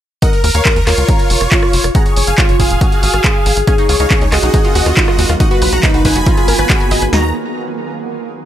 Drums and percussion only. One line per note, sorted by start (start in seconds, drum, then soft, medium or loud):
0.22 kick loud
0.22 closed hi-hat medium
0.33 closed hi-hat soft
0.44 open hi-hat loud
0.55 closed hi-hat medium
0.65 kick loud
0.65 clap loud
0.65 closed hi-hat medium
0.76 closed hi-hat soft
0.87 cross-stick medium
0.87 clap medium
0.87 open hi-hat loud
0.98 closed hi-hat medium
1.09 kick loud
1.09 closed hi-hat medium
1.19 closed hi-hat soft
1.30 open hi-hat loud
1.41 cross-stick medium
1.41 closed hi-hat medium
1.52 kick loud
1.52 clap loud
1.52 closed hi-hat medium
1.63 cross-stick medium
1.73 open hi-hat loud
1.84 cross-stick medium
1.84 closed hi-hat medium
1.95 kick loud
1.95 closed hi-hat medium
2.06 closed hi-hat soft
2.16 open hi-hat loud
2.27 closed hi-hat medium
2.38 kick loud
2.38 clap loud
2.38 closed hi-hat medium
2.49 closed hi-hat soft
2.60 kick medium
2.60 open hi-hat loud
2.70 closed hi-hat medium
2.81 kick loud
2.81 closed hi-hat medium
2.92 closed hi-hat soft
3.03 open hi-hat loud
3.14 cross-stick medium
3.14 closed hi-hat medium
3.24 kick loud
3.24 clap loud
3.24 closed hi-hat medium
3.46 open hi-hat loud
3.57 closed hi-hat medium
3.67 kick loud
3.67 closed hi-hat medium
3.78 closed hi-hat soft
3.89 open hi-hat loud
4.00 closed hi-hat medium
4.11 kick loud
4.11 clap loud
4.11 closed hi-hat medium
4.21 closed hi-hat soft
4.32 cross-stick medium
4.32 clap medium
4.32 open hi-hat loud
4.43 closed hi-hat medium
4.54 kick loud
4.54 closed hi-hat medium
4.65 closed hi-hat soft
4.75 open hi-hat loud
4.86 cross-stick medium
4.86 closed hi-hat soft
4.97 kick loud
4.97 clap loud
4.97 closed hi-hat medium
5.08 cross-stick medium
5.19 open hi-hat loud
5.29 cross-stick medium
5.29 closed hi-hat medium
5.40 kick loud
5.40 closed hi-hat medium
5.51 closed hi-hat soft
5.62 open hi-hat loud
5.73 closed hi-hat medium
5.83 kick loud
5.83 clap loud
5.83 closed hi-hat medium
5.94 closed hi-hat soft
6.05 kick medium
6.05 open hi-hat loud
6.16 closed hi-hat soft
6.26 kick loud
6.26 closed hi-hat medium
6.37 closed hi-hat soft
6.48 open hi-hat loud
6.59 cross-stick medium
6.70 kick loud
6.70 clap loud
6.70 closed hi-hat medium
6.80 closed hi-hat soft
6.91 open hi-hat loud
7.02 closed hi-hat soft
7.13 snare loud